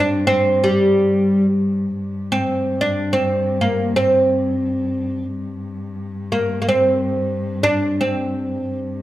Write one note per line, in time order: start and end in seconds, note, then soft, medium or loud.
0.00 1.96 G2 medium
0.00 0.26 D4 medium
0.27 0.65 C4 medium
0.64 1.45 G3 medium
1.97 5.29 G2 medium
2.32 2.80 C4 medium
2.81 3.14 D4 medium
3.13 3.61 C4 medium
3.61 3.96 A#3 medium
3.96 5.25 C4 medium
5.30 8.65 G2 medium
6.32 6.60 A#3 medium
6.62 6.68 A#3 soft
6.69 7.65 C4 medium
7.63 8.01 D4 medium
8.01 8.78 C4 medium
8.66 9.02 G2 medium